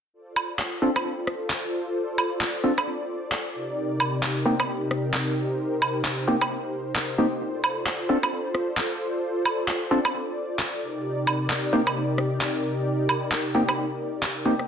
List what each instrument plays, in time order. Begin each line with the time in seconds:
0.14 analog synth pad F4 A4 C5 D5
0.36 high woodblock
0.59 clap
0.82 synth stab C4 D4 F4 A4
0.96 cross-stick, high woodblock
1.27 cross-stick
1.50 clap
2.18 high woodblock
2.41 clap
2.64 synth stab C4 D4 F4 A4
2.78 cross-stick, high woodblock
3.32 clap
3.55 analog synth pad C3 D#4 G4 A#4
4.00 high woodblock
4.23 clap
4.46 synth stab A#3 C4 D#4 G4
4.60 cross-stick, high woodblock
4.91 cross-stick
5.14 clap
5.36 analog synth pad C5
5.82 high woodblock
6.05 clap
6.27 synth stab A#3 C4 D#4 G4
6.41 cross-stick, high woodblock
6.96 clap
7.18 synth stab A#3 C4 D#4 G4
7.41 analog synth pad F4 A4 D5
7.64 high woodblock
7.86 clap
8.09 synth stab C4 D4 F4 A4
8.23 cross-stick, high woodblock
8.55 cross-stick
8.77 clap
9.45 high woodblock
9.68 clap
9.91 synth stab C4 D4 F4 A4
10.05 cross-stick, high woodblock
10.59 clap
10.82 analog synth pad C3 D#4 G4 A#4
11.27 high woodblock
11.50 clap
11.73 synth stab A#3 C4 D#4 G4
11.87 cross-stick, high woodblock
12.18 cross-stick
12.41 clap
13.09 high woodblock
13.32 clap
13.55 synth stab A#3 C4 D#4 G4
13.69 cross-stick, high woodblock
14.23 clap
14.45 synth stab A#3 C4 D#4 G4
14.59 cross-stick